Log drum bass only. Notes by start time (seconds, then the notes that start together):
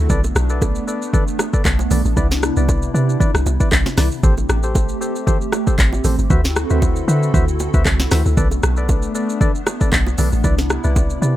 0.10 B1
0.35 B1
1.65 B1
1.91 B1
2.05 A1
2.17 C2
2.57 C2
2.94 C3
3.34 C2
3.46 C2
3.72 B1
3.98 C2
4.23 A1
4.49 A1
5.79 A1
6.04 A1
6.19 G1
6.30 D2
6.71 D2
7.08 D3
7.34 D2
7.74 D2
7.86 C2
8.12 D2
8.26 D2
8.37 B1
8.63 B1
9.93 B1
10.19 B1
10.33 A1
10.44 C2
10.85 C2
11.22 C3